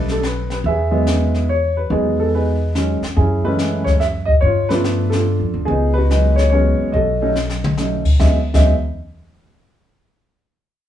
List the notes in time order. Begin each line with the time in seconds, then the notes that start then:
Already playing: B1 D#3 G3 A3 D4 D#4 D5
0.08 A4, snare
0.23 B4, snare, hi-hat pedal
0.50 B4, snare
0.64 E2 G#4 B4 E5, brush sweep, kick
0.91 D#3 F#3 G#3 B3
1.07 snare, hi-hat pedal
1.34 snare
1.49 C#5
1.77 B4
1.90 E2 D#3 F#3 G#3 B3 D#4 G#4, brush sweep, kick
2.20 A4
2.35 D#4 G#4 B4
2.75 D#3 F#3 G#3 C#4, snare, hi-hat pedal
3.01 muted upright bass stroke, snare
3.17 F#2 C#4 E4 G#4, brush sweep, kick
3.44 E3 G#3 A3 C#4 E4 B4
3.59 snare, hi-hat pedal
3.84 C#5, kick, snare
4.00 E5, snare
4.25 D#5, kick
4.41 G2 C#5, brush sweep
4.45 F4
4.69 F3 A3 B3 D4 F4 B4, snare
4.84 snare, hi-hat pedal
5.10 A4, snare
5.14 D4 F4
5.40 F2
5.54 D2
5.65 C#2 G#4, brush sweep, kick
5.70 B3 D#4
5.94 B4
5.98 D#4 F#4
6.10 F#3 G#3 B3 D#4, snare, hi-hat pedal
6.36 C#5, snare
6.50 F#3 G#3 B3 C#4 G#4 C#5
6.54 F#4
6.79 muted upright bass stroke
6.92 B1 F#4 A4 D#5, brush sweep, kick
7.22 F#3 A3 C#4 D#4
7.35 snare, hi-hat pedal
7.50 snare
7.64 mid tom
7.77 F#3 A3 C#4 D#4, snare, hi-hat pedal
8.05 kick, crash
8.20 E2 F#3 G#3 B3 D#4 E5, kick, snare
8.54 E2 F#3 G#3 B3 D#4 E5, kick, snare, crash